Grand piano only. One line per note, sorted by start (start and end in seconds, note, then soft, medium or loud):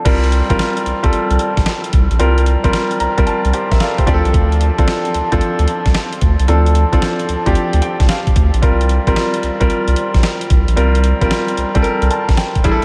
0.05 0.45 G3 medium
0.05 0.45 C4 medium
0.05 0.45 F4 medium
0.05 0.45 A#4 medium
0.49 0.97 G3 medium
0.49 0.97 C4 medium
0.49 0.97 F4 medium
0.49 0.97 A#4 medium
1.03 1.97 G3 medium
1.03 1.97 C4 medium
1.03 1.97 F4 medium
1.03 1.98 A4 medium
2.19 2.59 G3 medium
2.19 2.59 C4 medium
2.19 2.59 F4 medium
2.19 2.60 A#4 medium
2.64 3.11 G3 medium
2.64 3.11 C4 medium
2.64 3.11 F4 medium
2.64 3.12 A#4 medium
3.00 3.25 A#5 medium
3.17 4.07 G3 medium
3.17 4.05 C4 medium
3.17 4.07 F4 medium
3.17 3.54 A#4 medium
3.27 3.52 A5 medium
3.53 3.71 G4 medium
3.53 3.71 C5 medium
3.53 3.79 G5 medium
3.72 3.80 A#4 medium
3.72 3.80 E5 medium
3.80 3.98 A4 medium
3.80 3.97 D5 medium
3.80 4.05 F5 medium
3.98 4.06 G4 medium
3.98 4.24 C5 medium
4.06 4.70 F3 medium
4.06 4.70 C4 medium
4.06 4.70 D4 medium
4.06 4.16 G4 medium
4.06 4.32 D5 medium
4.14 4.74 A4 loud
4.78 5.25 F3 medium
4.78 5.25 C4 medium
4.78 5.26 D4 medium
4.78 5.26 A4 medium
5.32 6.26 F3 medium
5.32 6.26 C4 medium
5.32 6.26 D4 medium
5.32 6.26 A4 medium
6.48 6.88 F3 medium
6.48 6.88 C4 medium
6.48 6.88 D4 medium
6.48 6.88 A4 medium
6.92 7.40 F3 medium
6.92 7.40 C4 medium
6.92 7.40 D4 medium
6.92 7.40 A4 medium
7.46 8.40 F3 medium
7.46 8.40 C4 medium
7.46 8.40 D4 medium
7.46 8.41 G4 medium
7.82 8.07 G5 medium
8.09 8.59 F5 medium
8.62 9.02 G3 medium
8.62 9.02 C4 medium
8.62 9.02 F4 medium
8.62 9.03 A#4 medium
9.07 9.54 G3 medium
9.07 9.54 C4 medium
9.07 9.54 F4 medium
9.07 9.55 A#4 medium
9.60 10.54 G3 medium
9.60 10.54 C4 medium
9.60 10.55 F4 medium
9.60 10.55 A#4 medium
10.76 11.16 G3 medium
10.76 11.16 C4 medium
10.76 11.17 F4 medium
10.76 11.17 A#4 medium
11.21 11.68 G3 medium
11.21 11.68 C4 medium
11.21 11.69 F4 medium
11.21 11.69 A#4 medium
11.75 12.62 G3 medium
11.75 12.64 C4 medium
11.75 12.65 F4 medium
11.75 11.80 A4 medium
11.82 12.68 A#4 loud
12.11 12.36 A5 medium
12.38 12.62 G5 medium
12.64 12.85 G3 medium
12.64 12.85 D4 medium
12.64 12.85 E4 medium
12.64 12.73 G#4 medium
12.64 12.85 E5 medium
12.72 12.85 A4 loud